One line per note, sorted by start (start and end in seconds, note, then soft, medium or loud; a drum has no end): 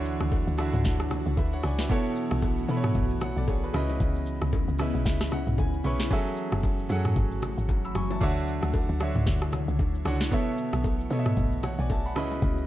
0.00 0.19 D2 loud
0.00 0.44 D3 loud
0.00 1.88 E3 medium
0.00 0.44 D4 loud
0.00 1.88 D4 medium
0.00 0.44 E4 loud
0.00 0.45 F#4 loud
0.00 3.70 F#4 loud
0.00 0.45 C#5 loud
0.00 1.88 C#5 medium
0.05 shaker medium
0.21 0.46 D2 medium
0.21 cross-stick loud
0.21 shaker medium
0.31 kick loud
0.31 high bongo medium
0.31 shaker medium
0.47 0.72 D2 loud
0.47 shaker medium
0.58 1.43 D3 medium
0.58 1.43 D4 medium
0.58 1.44 E4 medium
0.58 1.44 F#4 medium
0.58 1.12 E5 loud
0.58 cross-stick loud
0.58 shaker loud
0.73 0.84 C#2 medium
0.73 mid tom loud
0.73 shaker medium
0.84 1.24 D2 loud
0.84 kick loud
0.84 snare medium
0.84 low conga medium
0.84 shaker medium
1.00 cross-stick loud
1.00 shaker medium
1.10 cross-stick medium
1.10 low bongo medium
1.10 low conga medium
1.10 shaker medium
1.26 1.37 C#2 loud
1.26 shaker medium
1.37 1.62 D2 medium
1.37 1.52 B4 medium
1.37 1.52 E5 medium
1.37 kick medium
1.37 high bongo medium
1.37 shaker medium
1.53 1.64 C#5 medium
1.53 1.63 F#5 medium
1.53 shaker medium
1.63 1.89 C#2 medium
1.63 1.79 D5 medium
1.63 1.78 G#5 medium
1.63 cross-stick loud
1.63 open hi-hat medium
1.63 shaker medium
1.79 2.04 B4 medium
1.79 2.04 E5 medium
1.79 snare medium
1.79 low bongo medium
1.79 shaker medium
1.89 2.54 B2 loud
1.89 3.72 E3 medium
1.89 3.72 A3 medium
1.89 6.07 B3 medium
1.89 2.55 B3 loud
1.89 2.55 E4 loud
1.89 2.55 A4 loud
1.89 2.56 C#5 loud
1.89 kick loud
1.89 low conga medium
1.89 shaker medium
2.05 shaker soft
2.16 shaker loud
2.31 2.67 B1 loud
2.31 cross-stick loud
2.31 shaker medium
2.42 kick loud
2.42 high bongo medium
2.42 shaker medium
2.58 shaker medium
2.68 3.53 B2 medium
2.68 2.94 B2 loud
2.68 3.54 B3 medium
2.68 3.54 E4 medium
2.68 2.96 A4 medium
2.68 2.77 B4 medium
2.68 shaker loud
2.77 2.99 C#5 loud
2.84 cross-stick loud
2.84 mid tom loud
2.84 shaker medium
2.95 3.35 B1 loud
2.95 kick loud
2.95 low conga medium
2.95 shaker medium
3.10 shaker medium
3.21 3.36 C#5 medium
3.21 3.36 F#5 medium
3.21 cross-stick medium
3.21 low bongo medium
3.21 low conga medium
3.21 shaker medium
3.37 3.72 B1 medium
3.37 3.48 A4 medium
3.37 3.48 D5 medium
3.37 shaker medium
3.48 3.63 G#4 medium
3.48 3.63 C#5 medium
3.48 kick loud
3.48 high bongo medium
3.48 shaker medium
3.63 3.89 F#4 medium
3.63 3.74 B4 medium
3.63 shaker medium
3.73 3.99 C#2 loud
3.73 4.59 C#3 medium
3.73 6.08 E3 medium
3.73 6.08 C#4 medium
3.73 4.59 C#4 medium
3.73 6.08 E4 loud
3.73 4.59 E4 medium
3.73 4.60 B4 medium
3.73 4.60 D#5 loud
3.73 cross-stick loud
3.73 open hi-hat medium
3.73 shaker medium
3.89 low bongo medium
3.89 shaker medium
4.00 4.40 C#2 loud
4.00 kick loud
4.00 low conga medium
4.00 shaker medium
4.15 shaker soft
4.26 shaker loud
4.42 4.67 C#2 medium
4.42 cross-stick medium
4.42 shaker medium
4.52 kick loud
4.52 high bongo medium
4.52 shaker medium
4.68 4.93 C#2 medium
4.68 shaker medium
4.79 5.64 C#3 medium
4.79 5.64 C#4 medium
4.79 5.65 E4 medium
4.79 5.65 B4 medium
4.79 5.04 D#5 medium
4.79 5.05 E5 medium
4.79 cross-stick loud
4.79 shaker loud
4.94 5.05 B1 medium
4.94 shaker medium
5.05 5.45 C#2 loud
5.05 5.30 E5 medium
5.05 kick loud
5.05 snare medium
5.05 low conga medium
5.05 shaker medium
5.21 cross-stick loud
5.21 snare medium
5.21 shaker medium
5.31 5.57 F#5 medium
5.31 cross-stick medium
5.31 low bongo medium
5.31 low conga medium
5.31 shaker medium
5.47 5.58 B1 medium
5.47 mid tom medium
5.47 shaker medium
5.58 5.83 C#2 medium
5.58 5.83 G#5 medium
5.58 kick medium
5.58 high bongo medium
5.58 shaker medium
5.74 shaker medium
5.84 6.09 B1 medium
5.84 6.06 C#3 medium
5.84 6.06 C#4 medium
5.84 6.07 E4 medium
5.84 6.07 B4 medium
5.84 6.07 C#5 medium
5.84 6.09 C#6 medium
5.84 open hi-hat medium
5.84 shaker medium
6.00 snare medium
6.00 low bongo medium
6.00 shaker medium
6.10 8.19 E3 medium
6.10 6.75 F#3 loud
6.10 8.19 F#3 medium
6.10 8.19 A3 medium
6.10 6.76 C#4 loud
6.10 8.19 F#4 medium
6.10 6.76 G#4 loud
6.10 6.76 A4 loud
6.10 6.77 E5 loud
6.10 kick loud
6.10 low conga medium
6.10 shaker medium
6.26 shaker soft
6.37 shaker loud
6.52 6.88 F#1 loud
6.52 cross-stick loud
6.52 shaker medium
6.63 kick loud
6.63 high bongo medium
6.63 shaker medium
6.79 shaker medium
6.89 7.15 F#2 loud
6.89 7.75 F#3 medium
6.89 7.75 C#4 medium
6.89 7.75 G#4 medium
6.89 7.75 A4 medium
6.89 7.43 F#5 loud
6.89 shaker loud
7.05 cross-stick medium
7.05 mid tom loud
7.05 shaker medium
7.16 7.56 G#1 loud
7.16 kick loud
7.16 low conga medium
7.16 shaker medium
7.31 shaker medium
7.42 cross-stick medium
7.42 low bongo medium
7.42 low conga medium
7.42 shaker medium
7.57 7.93 G#1 medium
7.57 shaker medium
7.69 kick loud
7.69 high bongo medium
7.69 shaker medium
7.84 7.95 B5 medium
7.84 7.95 E6 medium
7.84 shaker medium
7.95 8.20 F#1 medium
7.95 8.10 G#5 medium
7.95 8.10 C#6 medium
7.95 cross-stick loud
7.95 open hi-hat medium
7.95 shaker medium
8.10 8.22 E5 medium
8.10 8.36 A5 medium
8.10 low bongo medium
8.10 shaker medium
8.21 8.61 D2 loud
8.21 8.86 D3 loud
8.21 10.30 D3 medium
8.21 10.30 F#3 medium
8.21 8.86 D4 loud
8.21 10.30 E4 loud
8.21 8.86 F#4 loud
8.21 10.30 C#5 medium
8.21 8.87 C#5 loud
8.21 8.87 E5 loud
8.21 kick loud
8.21 low conga medium
8.21 shaker medium
8.36 shaker soft
8.47 shaker loud
8.63 8.88 D2 medium
8.63 cross-stick medium
8.63 shaker medium
8.73 kick loud
8.73 high bongo medium
8.73 shaker medium
8.89 9.14 D2 loud
8.89 shaker medium
9.00 9.85 D3 medium
9.00 9.85 D4 medium
9.00 9.86 F#4 medium
9.00 9.86 C#5 medium
9.00 9.86 E5 loud
9.00 cross-stick loud
9.00 shaker loud
9.15 9.26 C#2 medium
9.15 mid tom loud
9.15 shaker medium
9.26 9.66 D2 loud
9.26 kick loud
9.26 snare medium
9.26 low conga medium
9.26 shaker medium
9.42 cross-stick loud
9.42 shaker medium
9.53 cross-stick medium
9.53 low bongo medium
9.53 low conga medium
9.53 shaker loud
9.68 9.79 C#2 loud
9.68 shaker medium
9.79 10.04 D2 medium
9.79 kick medium
9.79 high bongo medium
9.79 shaker medium
9.95 shaker soft
10.05 10.30 C#2 medium
10.05 10.27 D3 medium
10.05 10.27 D4 medium
10.05 10.28 F#4 medium
10.05 10.28 C#5 medium
10.05 10.28 F#5 loud
10.05 cross-stick loud
10.05 open hi-hat medium
10.05 shaker medium
10.21 snare medium
10.21 low bongo medium
10.21 shaker medium
10.31 10.96 B2 loud
10.31 12.14 E3 medium
10.31 12.14 A3 medium
10.31 12.67 B3 medium
10.31 10.97 B3 loud
10.31 12.14 F#4 loud
10.31 10.97 A4 loud
10.31 10.97 C#5 loud
10.31 10.98 E5 loud
10.31 kick loud
10.31 low conga medium
10.31 shaker medium
10.47 shaker soft
10.58 shaker loud
10.73 11.09 B1 medium
10.73 cross-stick loud
10.73 shaker medium
10.84 kick loud
10.84 high bongo medium
10.84 shaker medium
11.00 shaker medium
11.10 11.96 B2 medium
11.10 11.36 B2 loud
11.10 11.96 B3 medium
11.10 11.96 A4 medium
11.10 11.63 C#5 medium
11.10 11.19 D#5 medium
11.10 shaker loud
11.19 11.68 E5 loud
11.26 cross-stick medium
11.26 mid tom loud
11.26 shaker medium
11.37 11.77 B1 loud
11.37 kick loud
11.37 low conga medium
11.37 shaker medium
11.52 shaker medium
11.63 11.79 C#5 medium
11.63 11.78 F#5 medium
11.63 cross-stick medium
11.63 low bongo medium
11.63 low conga medium
11.63 shaker medium
11.79 12.17 B1 loud
11.79 11.90 D5 medium
11.79 11.90 G#5 medium
11.79 shaker medium
11.90 12.05 E5 medium
11.90 12.05 A5 medium
11.90 kick loud
11.90 high bongo medium
11.90 shaker medium
12.05 12.31 F#5 medium
12.05 12.30 B5 medium
12.05 shaker medium
12.15 12.41 C#2 loud
12.15 12.67 C#3 loud
12.15 12.67 E3 medium
12.15 12.67 C#4 medium
12.15 12.67 E4 medium
12.15 12.67 B4 medium
12.15 12.67 D#5 loud
12.15 cross-stick loud
12.15 open hi-hat medium
12.15 shaker medium
12.31 low bongo medium
12.31 shaker medium
12.42 12.67 C#2 loud
12.42 kick loud
12.42 low conga medium
12.42 shaker medium
12.57 shaker soft